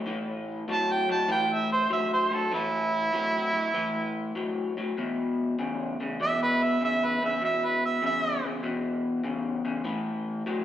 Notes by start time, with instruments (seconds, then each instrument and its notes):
0.06 clean electric guitar A2 E3
0.68 clean electric guitar A2 F#3, harmonica A5
0.92 harmonica G5
1.09 clean electric guitar A2 F#3, harmonica A5
1.28 clean electric guitar A2 E3, harmonica G5
1.53 harmonica E5
1.72 harmonica C5
1.90 clean electric guitar A2 F#3, harmonica E5
2.13 harmonica C5
2.31 clean electric guitar A2 F#3, harmonica A4
2.52 clean electric guitar A2 E3, harmonica E4
3.13 clean electric guitar A2 F#3
3.54 clean electric guitar A2 F#3
3.74 clean electric guitar A2 E3
4.35 clean electric guitar A2 F#3
4.77 clean electric guitar A2 F#3
4.98 clean electric guitar E2 B2
5.59 clean electric guitar E2 C#3
6.00 clean electric guitar E2 C#3
6.20 clean electric guitar E2 B2, harmonica E5
6.43 harmonica B4
6.63 harmonica E5
6.81 clean electric guitar E2 C#3, harmonica E5
7.05 harmonica B4
7.22 clean electric guitar E2 C#3, harmonica E5
7.41 clean electric guitar E2 B2, harmonica E5
7.65 harmonica B4
7.85 harmonica E5
8.02 clean electric guitar E2 C#3
8.06 harmonica E5
8.44 clean electric guitar E2 C#3
8.63 clean electric guitar E2 B2
9.24 clean electric guitar E2 C#3
9.65 clean electric guitar E2 C#3
9.84 clean electric guitar A2 E3
10.46 clean electric guitar A2 F#3